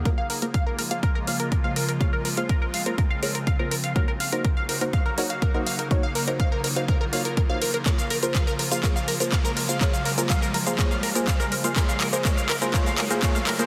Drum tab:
HH |x-oxx-oxx-oxx-ox|x-oxx-oxx-oxx-ox|x-oxx-oxx-oxx-ox|x-oxx-oxx-oxx-ox|
SH |----------------|----------------|----------------|----------------|
CP |----------------|----------------|----------------|----------------|
BD |o---o---o---o---|o---o---o---o---|o---o---o---o---|o---o---o---o---|

HH |x-oxx-oxx-oxx-ox|x-oxx-oxx-oxx-ox|x-oxx-oxx-oxx-ox|
SH |xx-xxx-xxx-xxx-x|xx-xxx-xxx-xxx-x|xx-xxx-xxx-xxx-x|
CP |x---x---x---x---|x---x---x---x---|x-x-x-x-x-x-x-x-|
BD |o---o---o---o---|o---o---o---o---|o---o---o---o---|